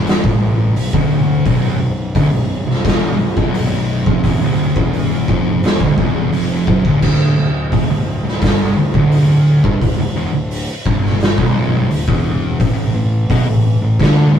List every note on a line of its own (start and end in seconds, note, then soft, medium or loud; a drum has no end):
0.00 0.20 E1 loud
0.00 0.23 E2 loud
0.06 snare loud
0.06 open hi-hat medium
0.24 0.72 A1 loud
0.24 0.75 A2 loud
0.24 kick loud
0.76 0.93 B0 medium
0.76 0.93 B1 medium
0.76 open hi-hat medium
0.93 1.42 D1 medium
0.93 1.44 D2 loud
0.93 kick loud
1.45 1.78 B0 medium
1.45 1.80 B1 loud
1.45 kick loud
1.45 open hi-hat medium
1.80 2.13 B0 medium
1.80 2.08 B1 medium
2.15 2.31 D1 loud
2.15 2.31 D2 loud
2.15 kick loud
2.15 open hi-hat medium
2.32 2.65 B0 medium
2.32 2.60 B1 medium
2.67 2.83 B0 medium
2.67 2.84 B1 medium
2.67 snare soft
2.85 3.17 E1 loud
2.85 3.18 E2 loud
2.85 kick loud
2.85 snare loud
2.85 open hi-hat medium
3.19 3.35 B0 medium
3.19 3.36 B1 medium
3.37 4.02 B0 loud
3.37 4.05 B1 medium
3.37 kick loud
3.54 open hi-hat medium
4.06 4.22 F1 loud
4.06 4.23 F2 loud
4.06 kick loud
4.23 4.40 E1 loud
4.23 4.40 E2 loud
4.23 kick loud
4.23 open hi-hat medium
4.41 4.73 D1 loud
4.41 4.75 D2 loud
4.76 5.24 E1 loud
4.76 5.27 E2 loud
4.76 kick loud
4.93 open hi-hat medium
5.28 5.60 F1 medium
5.28 5.62 F2 loud
5.28 kick loud
5.63 5.79 E1 loud
5.63 5.80 E2 loud
5.63 snare loud
5.63 open hi-hat medium
5.80 5.97 D1 medium
5.80 5.97 D2 loud
5.80 kick loud
5.97 6.30 E1 medium
5.97 6.31 E2 loud
5.97 kick loud
6.32 6.65 F1 loud
6.32 6.66 F2 loud
6.32 open hi-hat medium
6.67 6.83 F#1 loud
6.67 6.84 F#2 loud
6.67 kick loud
6.85 7.01 D1 medium
6.85 7.01 D2 loud
6.85 kick loud
7.02 7.35 D1 medium
7.02 7.36 D2 loud
7.02 kick loud
7.02 crash loud
7.38 7.70 D1 medium
7.38 7.65 D2 medium
7.72 7.88 E1 loud
7.72 7.88 E2 loud
7.72 kick loud
7.72 open hi-hat medium
7.90 8.22 D1 medium
7.90 8.18 D2 medium
8.24 8.40 D1 medium
8.24 8.42 D2 medium
8.24 snare soft
8.41 8.74 G1 loud
8.41 8.76 G2 loud
8.41 kick loud
8.41 snare loud
8.41 open hi-hat medium
8.76 8.93 D1 medium
8.76 8.94 D2 medium
8.94 9.60 D1 loud
8.94 9.63 D2 medium
8.94 kick loud
9.12 open hi-hat medium
9.64 9.80 G1 loud
9.64 9.80 G2 loud
9.64 kick loud
9.81 9.97 D1 medium
9.81 9.97 D2 medium
9.81 kick medium
9.81 open hi-hat medium
9.98 10.14 D1 medium
9.98 10.15 D2 medium
10.16 10.32 E1 loud
10.16 10.32 E2 loud
10.33 10.66 D1 medium
10.33 10.61 D2 medium
10.51 open hi-hat medium
10.85 11.34 G1 loud
10.85 11.37 G2 loud
10.85 kick loud
11.06 snare soft
11.20 snare loud
11.20 open hi-hat medium
11.37 11.87 B0 loud
11.37 11.89 B1 loud
11.37 kick loud
11.90 12.06 D1 medium
11.90 12.08 D2 medium
11.90 open hi-hat medium
12.08 12.56 E1 loud
12.08 12.59 E2 loud
12.08 kick loud
12.60 12.92 A1 loud
12.60 12.94 A2 loud
12.60 kick loud
12.60 open hi-hat medium
12.95 13.27 A1 medium
12.95 13.23 A2 medium
13.30 13.46 B1 loud
13.30 13.46 B2 loud
13.30 kick loud
13.30 open hi-hat medium
13.48 13.80 A1 medium
13.48 13.75 A2 medium
13.82 13.98 A1 medium
13.82 14.00 A2 medium
14.00 14.32 D2 loud
14.00 14.34 D3 loud
14.00 kick loud
14.00 snare loud
14.00 open hi-hat medium
14.35 14.39 A1 medium
14.35 14.39 A2 medium